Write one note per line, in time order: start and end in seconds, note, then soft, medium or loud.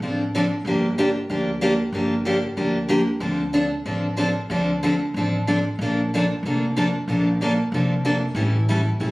0.00 0.52 A1 medium
0.00 0.21 D3 medium
0.00 0.21 F3 medium
0.00 0.21 C4 medium
0.00 0.22 D4 medium
0.00 0.22 A4 medium
0.35 0.44 D3 medium
0.35 0.44 F3 medium
0.35 0.45 C4 medium
0.35 0.45 D4 medium
0.35 0.45 A4 medium
0.65 1.16 G1 medium
0.65 0.85 D3 medium
0.65 0.86 F3 medium
0.65 0.86 A#3 medium
0.65 0.86 D4 medium
0.65 0.86 G4 medium
0.98 1.08 D3 medium
0.98 1.08 F3 medium
0.98 1.08 A#3 medium
0.98 1.09 D4 medium
0.98 1.08 G4 loud
1.30 1.81 D2 medium
1.30 1.49 D3 medium
1.30 1.49 F3 medium
1.30 1.49 A#3 medium
1.30 1.50 D4 medium
1.30 1.50 G4 medium
1.61 1.72 D3 medium
1.61 1.72 F3 medium
1.61 1.72 A#3 medium
1.61 1.72 D4 medium
1.61 1.73 G4 medium
1.93 2.44 G1 medium
1.93 2.13 D3 medium
1.93 2.14 F3 medium
1.93 2.14 A#3 medium
1.93 2.14 D4 medium
1.93 2.14 G4 medium
2.25 2.36 D3 medium
2.25 2.36 F3 medium
2.25 2.36 A#3 medium
2.25 2.37 D4 medium
2.25 2.37 G4 loud
2.57 3.09 D2 medium
2.57 2.77 D3 medium
2.57 2.77 F3 medium
2.57 2.77 A#3 medium
2.57 2.77 D4 medium
2.57 2.77 G4 medium
2.89 3.00 D3 medium
2.89 3.00 F3 medium
2.89 3.00 A#3 medium
2.89 3.00 D4 medium
2.89 3.00 G4 medium
3.20 3.72 D2 medium
3.20 3.41 D3 medium
3.20 3.41 F3 medium
3.20 3.41 C4 medium
3.20 3.41 D4 medium
3.20 3.41 A4 medium
3.53 3.64 D3 medium
3.53 3.64 F3 medium
3.53 3.65 C4 medium
3.53 3.65 D4 medium
3.53 3.65 A4 medium
3.86 4.37 A1 medium
3.86 4.06 D3 medium
3.86 4.06 F3 medium
3.86 4.06 C4 medium
3.86 4.06 D4 medium
3.86 4.06 A4 medium
4.17 4.28 D3 medium
4.17 4.28 F3 medium
4.17 4.29 C4 medium
4.17 4.29 D4 medium
4.17 4.29 A4 medium
4.50 5.02 D2 medium
4.50 4.70 D3 medium
4.50 4.70 F3 medium
4.50 4.70 C4 medium
4.50 4.71 D4 medium
4.50 4.71 A4 medium
4.83 4.93 D3 medium
4.83 4.93 F3 medium
4.83 4.93 C4 medium
4.83 4.94 D4 medium
4.83 4.94 A4 medium
5.14 5.66 A1 medium
5.14 5.35 D3 medium
5.14 5.36 F3 medium
5.14 5.35 C4 medium
5.14 5.36 D4 medium
5.14 5.36 A4 medium
5.47 5.58 D3 medium
5.47 5.58 F3 medium
5.47 5.58 C4 medium
5.47 5.58 D4 medium
5.47 5.58 A4 medium
5.79 6.30 A#1 medium
5.79 6.00 D3 medium
5.79 6.00 F3 medium
5.79 6.00 A#3 medium
5.79 6.01 D4 medium
5.79 6.01 A4 medium
6.14 6.23 D3 medium
6.14 6.24 F3 medium
6.14 6.24 A#3 medium
6.14 6.24 D4 medium
6.14 6.24 A4 medium
6.43 6.95 F1 medium
6.43 6.64 D3 medium
6.43 6.65 F3 medium
6.43 6.65 A#3 medium
6.43 6.65 D4 medium
6.43 6.65 A4 medium
6.77 6.87 D3 medium
6.77 6.87 F3 medium
6.77 6.87 A#3 medium
6.77 6.87 D4 medium
6.77 6.87 A4 medium
7.08 7.59 A#1 medium
7.08 7.28 D3 medium
7.08 7.28 F3 medium
7.08 7.28 A#3 medium
7.08 7.29 D4 medium
7.08 7.29 A4 medium
7.41 7.51 D3 medium
7.41 7.51 F3 medium
7.41 7.52 A#3 medium
7.41 7.52 D4 medium
7.41 7.52 A4 medium
7.72 8.24 F1 medium
7.72 7.93 D3 medium
7.72 7.93 F3 medium
7.72 7.93 A#3 medium
7.72 7.93 D4 medium
7.72 7.93 A4 medium
8.05 8.15 D3 medium
8.05 8.15 F3 medium
8.05 8.15 A#3 medium
8.05 8.16 D4 medium
8.05 8.16 A4 medium
8.35 8.87 A1 medium
8.35 8.56 E3 medium
8.35 8.56 G3 medium
8.35 8.56 C#4 medium
8.35 8.56 E4 medium
8.35 8.57 A4 medium
8.69 8.79 E3 medium
8.69 8.79 G3 medium
8.69 8.80 C#4 medium
8.69 8.80 E4 medium
8.69 8.80 A4 medium
9.00 9.11 A#1 medium
9.00 9.11 E3 medium
9.00 9.11 G3 medium
9.00 9.11 C#4 medium
9.00 9.11 E4 medium
9.00 9.11 A4 medium